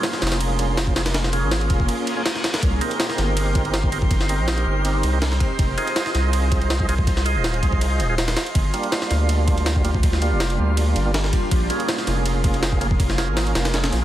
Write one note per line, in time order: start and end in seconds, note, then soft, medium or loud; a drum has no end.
0.00 0.94 A#3 medium
0.00 0.94 C#4 medium
0.00 0.94 F4 medium
0.00 0.94 G#4 medium
0.00 2.61 C6 medium
0.00 snare loud
0.00 ride medium
0.13 snare medium
0.22 1.44 F1 medium
0.22 snare medium
0.22 ride medium
0.27 snare medium
0.27 ride medium
0.32 snare loud
0.32 ride medium
0.41 ride medium
0.59 ride medium
0.77 snare loud
0.77 ride medium
0.87 kick medium
0.96 1.02 A#3 medium
0.96 1.02 C#4 medium
0.96 1.02 F4 medium
0.96 1.02 G#4 loud
0.96 snare loud
0.96 ride medium
1.06 snare loud
1.06 ride medium
1.14 snare loud
1.14 ride medium
1.24 snare medium
1.33 2.15 A#3 medium
1.33 2.15 C#4 medium
1.33 2.15 F4 medium
1.33 2.15 G#4 medium
1.33 ride medium
1.43 1.69 G#1 medium
1.51 snare loud
1.51 ride medium
1.61 ride soft
1.70 1.88 F1 loud
1.70 kick loud
1.70 ride medium
1.80 kick medium
1.89 ride medium
1.89 reverse cymbal medium
2.07 ride medium
2.17 2.23 A#3 medium
2.17 2.23 C#4 medium
2.17 2.23 F4 medium
2.17 2.23 G#4 loud
2.26 snare loud
2.26 ride medium
2.35 snare soft
2.44 snare loud
2.44 ride medium
2.54 snare loud
2.54 ride medium
2.63 2.79 C2 loud
2.63 14.04 C6 medium
2.63 kick loud
2.63 ride medium
2.81 3.90 C4 medium
2.81 3.90 D#4 medium
2.81 3.90 G4 medium
2.81 3.90 A#4 medium
2.81 ride medium
2.91 ride soft
3.00 snare loud
3.00 ride medium
3.09 snare medium
3.18 4.40 G1 loud
3.18 snare soft
3.18 ride medium
3.37 ride loud
3.55 kick loud
3.55 ride medium
3.65 ride soft
3.74 snare loud
3.74 ride medium
3.84 kick loud
3.92 3.98 C4 medium
3.92 3.98 D#4 medium
3.92 3.98 G4 medium
3.92 3.98 A#4 loud
3.92 ride medium
4.02 kick loud
4.11 kick loud
4.11 ride medium
4.21 snare medium
4.29 5.11 C4 medium
4.29 5.11 D#4 medium
4.29 5.11 G4 medium
4.29 5.11 A#4 loud
4.29 ride medium
4.39 4.65 A#1 loud
4.48 snare loud
4.48 ride medium
4.58 ride soft
4.66 5.02 G1 medium
4.85 ride medium
5.03 5.39 C2 loud
5.03 ride medium
5.13 5.19 C4 medium
5.13 5.19 D#4 medium
5.13 5.19 G4 medium
5.13 5.19 A#4 loud
5.22 snare loud
5.22 ride medium
5.32 snare medium
5.40 kick loud
5.40 ride medium
5.59 5.76 F1 loud
5.59 kick loud
5.59 ride medium
5.78 6.87 F4 medium
5.78 6.87 G#4 medium
5.78 6.87 C5 medium
5.78 6.87 D#5 loud
5.78 ride medium
5.87 ride soft
5.96 snare loud
5.96 ride medium
6.06 snare medium
6.14 7.37 C2 loud
6.14 snare soft
6.14 ride medium
6.33 ride medium
6.52 kick loud
6.52 ride medium
6.61 ride soft
6.70 snare loud
6.70 ride medium
6.80 kick loud
6.89 6.95 F4 medium
6.89 6.95 G#4 medium
6.89 6.95 C5 medium
6.89 6.95 D#5 loud
6.89 ride medium
6.98 kick loud
7.07 kick loud
7.07 ride medium
7.17 snare medium
7.26 8.08 F4 medium
7.26 8.07 G#4 medium
7.26 8.07 C5 medium
7.26 8.07 D#5 loud
7.26 ride medium
7.36 7.61 D#1 loud
7.44 snare loud
7.44 ride medium
7.54 ride soft
7.63 8.01 C2 medium
7.63 kick loud
7.63 ride medium
7.73 kick loud
7.81 ride medium
8.00 8.35 D#1 medium
8.00 ride medium
8.09 8.15 F4 medium
8.09 8.15 G#4 medium
8.09 8.15 C5 medium
8.09 8.15 D#5 medium
8.18 snare loud
8.18 ride medium
8.28 snare loud
8.28 ride medium
8.37 snare loud
8.37 ride medium
8.46 ride soft
8.55 8.72 G1 loud
8.55 kick loud
8.55 ride medium
8.74 9.83 G3 medium
8.74 9.83 A#3 medium
8.74 9.83 D4 medium
8.74 9.83 F4 medium
8.74 ride medium
8.83 ride soft
8.92 snare loud
8.92 ride medium
9.02 snare medium
9.11 10.33 D2 medium
9.11 snare soft
9.11 ride medium
9.29 ride medium
9.48 kick loud
9.48 ride medium
9.58 ride soft
9.66 snare loud
9.66 ride medium
9.76 kick loud
9.85 9.91 G3 medium
9.85 9.91 A#3 medium
9.85 9.91 D4 medium
9.85 9.91 F4 loud
9.85 ride medium
9.94 kick loud
10.03 kick loud
10.03 ride medium
10.13 snare medium
10.22 11.04 G3 medium
10.22 11.04 A#3 medium
10.22 11.04 D4 medium
10.22 11.04 F4 medium
10.22 ride medium
10.32 10.57 F1 loud
10.40 snare loud
10.40 ride medium
10.50 ride soft
10.59 10.95 D2 loud
10.77 ride medium
10.96 11.32 G1 medium
10.96 ride medium
11.06 11.11 G3 medium
11.06 11.11 A#3 medium
11.06 11.11 D4 medium
11.06 11.11 F4 loud
11.14 snare loud
11.14 ride medium
11.24 snare soft
11.33 kick loud
11.33 ride medium
11.51 11.68 A#1 loud
11.51 kick loud
11.51 ride medium
11.70 12.79 A#3 medium
11.70 12.79 C#4 medium
11.70 12.79 F4 medium
11.70 12.79 G#4 medium
11.70 ride medium
11.80 ride soft
11.88 snare loud
11.88 ride medium
11.98 snare medium
12.07 13.29 F1 loud
12.07 snare soft
12.07 ride medium
12.26 ride medium
12.44 kick loud
12.44 ride medium
12.54 ride soft
12.63 snare loud
12.63 ride medium
12.72 kick loud
12.81 12.87 A#3 medium
12.81 12.87 C#4 medium
12.81 12.87 F4 medium
12.81 12.87 G#4 loud
12.81 ride medium
12.91 kick loud
13.00 kick loud
13.00 ride medium
13.10 snare medium
13.18 14.00 A#3 medium
13.18 14.00 C#4 medium
13.18 14.00 F4 medium
13.18 14.00 G#4 loud
13.18 snare loud
13.18 ride medium
13.28 13.54 G#1 loud
13.37 snare loud
13.37 ride medium
13.47 ride soft
13.55 13.91 F1 loud
13.55 snare loud
13.55 ride medium
13.65 snare loud
13.65 ride medium
13.74 snare loud
13.74 ride medium
13.84 snare loud
13.84 ride medium
13.92 14.04 A#1 medium
13.92 snare soft
13.92 ride medium